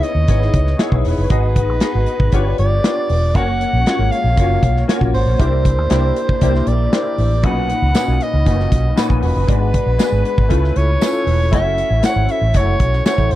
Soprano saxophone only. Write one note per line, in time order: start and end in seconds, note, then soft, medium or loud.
0.04 0.80 D#5 medium
1.08 2.56 B4 medium
2.59 3.37 D5 medium
3.36 4.13 F#5 loud
4.12 4.88 F5 medium
5.14 6.70 C5 medium
6.68 7.46 D5 medium
7.45 8.24 F#5 loud
8.23 8.98 D#5 medium
9.25 10.78 B4 medium
10.77 11.53 C#5 medium
11.54 12.01 E5 loud
12.05 12.33 F#5 loud
12.31 12.58 E5 medium
12.57 13.06 C#5 medium
13.06 13.33 C#5 medium
13.32 13.35 C5 medium